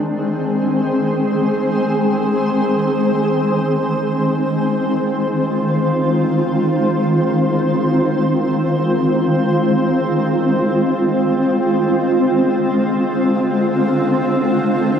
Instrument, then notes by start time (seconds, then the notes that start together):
ambient pad
Already playing: D#3 G#3 C4 G#4 C5
4.36 F4
11.61 D3
14.18 A#4